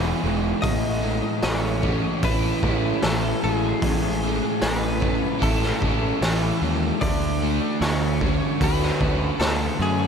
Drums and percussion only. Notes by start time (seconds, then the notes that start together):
0.63 kick, open hi-hat
1.42 snare, open hi-hat
1.83 kick
2.23 kick, open hi-hat
2.63 kick
3.02 snare, open hi-hat
3.82 kick, open hi-hat
4.62 snare, open hi-hat
5.02 kick
5.42 kick, open hi-hat
5.62 snare
5.82 kick
6.22 snare, open hi-hat
7.02 kick, open hi-hat
7.82 snare, open hi-hat
8.21 kick
8.61 kick, open hi-hat
8.82 snare
9.01 kick
9.41 snare, open hi-hat